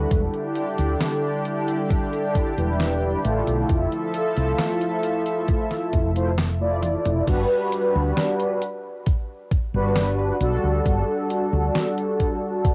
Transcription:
0.00 2.51 G3 medium
0.00 2.52 D4 medium
0.00 2.52 E4 medium
0.00 2.53 A4 medium
0.11 0.27 E1 medium
0.11 3.66 D3 medium
0.11 3.66 D4 medium
0.11 3.66 G4 medium
0.11 kick loud
0.11 closed hi-hat medium
0.34 closed hi-hat soft
0.55 closed hi-hat medium
0.78 0.94 D2 medium
0.78 closed hi-hat soft
1.01 snare loud
1.01 closed hi-hat medium
1.45 closed hi-hat medium
1.68 closed hi-hat soft
1.90 kick loud
1.90 closed hi-hat medium
2.13 closed hi-hat soft
2.35 kick loud
2.35 closed hi-hat medium
2.57 3.14 E1 medium
2.57 3.19 G3 medium
2.57 3.19 D4 medium
2.57 3.19 E4 medium
2.57 3.20 B4 medium
2.57 closed hi-hat soft
2.80 snare loud
2.80 closed hi-hat medium
3.23 3.41 A1 medium
3.23 6.10 A3 medium
3.23 6.10 E4 medium
3.23 6.11 F4 medium
3.23 6.11 A4 medium
3.23 closed hi-hat medium
3.47 3.63 B1 medium
3.47 closed hi-hat soft
3.69 3.85 F1 loud
3.69 7.24 F3 medium
3.69 7.24 A4 medium
3.69 7.24 E5 medium
3.69 kick loud
3.69 closed hi-hat medium
3.92 closed hi-hat soft
4.14 closed hi-hat medium
4.36 4.53 C2 medium
4.36 closed hi-hat medium
4.58 snare loud
4.58 closed hi-hat medium
4.81 closed hi-hat soft
5.03 closed hi-hat medium
5.26 closed hi-hat medium
5.48 kick loud
5.48 closed hi-hat medium
5.71 snare soft
5.71 closed hi-hat soft
5.93 6.95 F1 medium
5.93 kick loud
5.93 closed hi-hat medium
6.15 6.31 A3 loud
6.15 6.31 E4 medium
6.15 6.31 F4 medium
6.15 6.31 C5 loud
6.15 closed hi-hat medium
6.38 snare loud
6.38 closed hi-hat medium
6.60 7.25 A3 medium
6.60 7.25 E4 medium
6.60 7.25 F4 medium
6.60 7.25 D5 medium
6.83 closed hi-hat medium
6.83 high tom medium
7.06 7.21 F1 medium
7.06 closed hi-hat medium
7.06 mid tom medium
7.26 7.44 G1 medium
7.26 8.61 G3 loud
7.26 8.62 D4 medium
7.26 8.62 F#4 medium
7.26 8.63 B4 loud
7.26 kick loud
7.26 closed hi-hat medium
7.26 crash loud
7.72 closed hi-hat medium
7.96 8.11 D2 medium
8.17 snare loud
8.17 closed hi-hat medium
8.40 closed hi-hat soft
8.62 closed hi-hat medium
9.06 kick loud
9.06 closed hi-hat medium
9.51 kick loud
9.51 closed hi-hat medium
9.74 10.30 G1 medium
9.74 10.36 G3 medium
9.74 10.36 D4 medium
9.74 10.36 F#4 medium
9.74 10.36 B4 medium
9.96 snare loud
9.96 closed hi-hat medium
10.40 10.57 B1 medium
10.40 12.75 G3 medium
10.40 12.75 D4 medium
10.40 12.75 F#4 medium
10.40 12.75 A4 medium
10.40 closed hi-hat medium
10.64 10.79 D2 medium
10.86 11.02 G1 loud
10.86 kick loud
10.86 closed hi-hat medium
11.30 closed hi-hat medium
11.53 11.69 D2 medium
11.75 snare loud
11.75 closed hi-hat medium
11.98 closed hi-hat soft
12.20 kick medium
12.20 closed hi-hat medium
12.65 kick loud
12.65 closed hi-hat medium

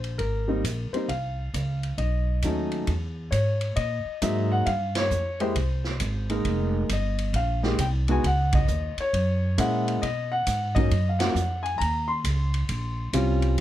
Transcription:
0.00 0.18 A#1 medium
0.00 0.20 C5 medium
0.00 ride soft
0.18 0.62 G#1 medium
0.18 0.95 A#4 medium
0.18 kick soft
0.18 ride soft
0.48 0.62 G3 medium
0.48 0.62 A#3 medium
0.48 0.62 C4 soft
0.48 0.62 D#4 medium
0.64 0.91 A#1 medium
0.64 kick soft
0.64 hi-hat pedal medium
0.64 ride medium
0.92 1.07 G3 soft
0.92 1.08 A#3 soft
0.92 1.08 C4 soft
0.92 1.07 C5 medium
0.92 muted upright bass stroke soft
0.92 ride soft
0.96 1.08 D#4 medium
1.08 1.52 C2 medium
1.08 1.94 F5 medium
1.08 kick soft
1.08 ride soft
1.54 1.97 C#2 medium
1.54 kick soft
1.54 hi-hat pedal medium
1.54 ride medium
1.83 ride soft
1.98 2.41 B1 medium
1.98 2.68 D#5 medium
1.98 kick soft
1.98 ride soft
2.42 2.86 D#2 medium
2.42 2.88 F#3 medium
2.42 2.88 A3 soft
2.42 2.89 C#4 soft
2.42 2.89 D#4 medium
2.42 kick soft
2.42 hi-hat pedal soft
2.42 ride medium
2.72 ride soft
2.87 3.31 E2 medium
2.87 kick soft
2.87 ride soft
3.31 3.75 G#2 medium
3.31 3.78 C#5 medium
3.31 kick soft
3.31 hi-hat pedal medium
3.31 ride medium
3.61 ride soft
3.76 4.04 A#2 medium
3.76 4.18 D#5 medium
3.76 kick soft
3.76 ride medium
4.05 muted upright bass stroke soft
4.22 4.65 G#2 medium
4.22 4.66 F#3 medium
4.22 4.67 G#3 medium
4.22 4.67 A#3 medium
4.22 4.67 D#4 medium
4.22 4.52 E5 medium
4.22 kick soft
4.22 hi-hat pedal medium
4.22 ride medium
4.52 4.67 F#5 medium
4.66 5.10 G2 medium
4.66 4.96 F5 loud
4.66 kick soft
4.66 ride medium
4.95 5.38 C#5 medium
4.95 snare medium
4.95 ride medium
5.10 5.54 F2 medium
5.10 hi-hat pedal medium
5.40 5.54 G#3 medium
5.40 5.54 A#3 medium
5.40 5.54 E4 medium
5.40 5.55 G4 medium
5.40 6.26 C5 medium
5.40 ride soft
5.55 5.99 C2 medium
5.55 kick soft
5.55 ride medium
5.84 snare soft
6.00 6.44 G#1 medium
6.00 kick soft
6.00 hi-hat pedal medium
6.00 ride medium
6.30 6.87 G#3 medium
6.30 6.87 A#3 medium
6.30 6.87 D#4 medium
6.30 6.88 A#4 medium
6.30 ride soft
6.45 6.88 F1 medium
6.45 kick soft
6.45 ride medium
6.89 7.33 G1 medium
6.89 7.33 D#5 medium
6.89 kick soft
6.89 hi-hat pedal medium
6.89 ride medium
7.19 ride soft
7.33 7.77 A#1 medium
7.33 7.81 F5 medium
7.33 kick soft
7.33 ride medium
7.63 7.77 G#3 medium
7.63 7.77 A#3 soft
7.63 7.78 D#4 medium
7.63 7.78 G4 medium
7.63 snare soft
7.79 8.22 C2 medium
7.79 7.86 G5 medium
7.79 kick soft
7.79 hi-hat pedal medium
7.79 ride medium
8.08 8.22 G#3 medium
8.08 8.22 B3 medium
8.08 8.22 D#4 medium
8.08 8.23 F#4 medium
8.08 8.24 G#5 medium
8.08 ride soft
8.24 8.67 C#2 medium
8.24 8.55 F#5 medium
8.24 kick soft
8.24 ride medium
8.53 8.95 D#5 medium
8.53 kick medium
8.53 ride medium
8.68 8.95 D#2 medium
8.68 hi-hat pedal medium
8.97 9.61 C#5 medium
8.97 muted upright bass stroke soft
8.97 ride soft
9.13 9.56 F#2 medium
9.13 kick soft
9.13 ride medium
9.58 10.01 A#2 medium
9.58 10.02 G#3 medium
9.58 10.02 A#3 medium
9.58 10.02 C#4 medium
9.58 10.02 E4 medium
9.58 10.00 F#5 medium
9.58 kick soft
9.58 hi-hat pedal medium
9.58 ride medium
9.88 ride soft
10.02 10.45 B2 medium
10.02 10.32 D#5 medium
10.02 kick soft
10.02 ride medium
10.32 10.77 F#5 medium
10.47 10.90 G#2 medium
10.47 kick soft
10.47 hi-hat pedal medium
10.47 ride medium
10.75 10.89 F#3 medium
10.75 10.90 A#3 medium
10.75 10.90 C#4 medium
10.75 10.90 D#4 medium
10.75 11.08 D#5 loud
10.75 kick medium
10.75 ride soft
10.91 11.34 F#2 medium
10.91 ride medium
11.09 11.19 F5 medium
11.19 11.34 F#3 medium
11.19 11.34 A#3 medium
11.19 11.34 C#4 medium
11.19 11.35 F4 medium
11.19 11.66 F#5 medium
11.19 snare medium
11.19 ride medium
11.34 11.78 F2 medium
11.34 hi-hat pedal medium
11.63 11.80 G#5 medium
11.63 ride soft
11.78 12.24 D#2 medium
11.78 12.09 A#5 loud
11.78 kick soft
11.78 ride medium
12.08 13.38 C6 medium
12.24 12.68 C#2 medium
12.24 kick soft
12.24 hi-hat pedal medium
12.24 ride medium
12.54 ride soft
12.69 13.12 A#1 medium
12.69 kick soft
12.69 ride medium
13.13 13.57 C2 medium
13.13 13.58 G3 medium
13.13 13.58 C4 medium
13.13 13.59 C#4 medium
13.13 13.59 F4 medium
13.13 kick soft
13.13 hi-hat pedal medium
13.13 ride medium
13.42 ride soft

